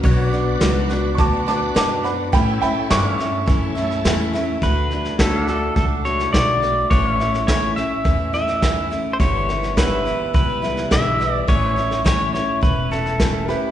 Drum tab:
HH |----p-------p---|----p-------p---|----p-------p---|----p-------p---|
SD |o-o-o-o-o-o-o-o-|o-o-o-o-o-ooo-o-|o-ooo-o-o-ooo-o-|o-ooo-o-o-ooo-o-|
BD |o-------o-------|o-------o-------|o---o---o---o---|o---o---o---o---|

HH |----p-------p---|----p-------p---|
SD |o-ooo-o-o-ooo-o-|o-ooo-o-o-ooo-o-|
BD |o---o---o---o---|o---o---o---o---|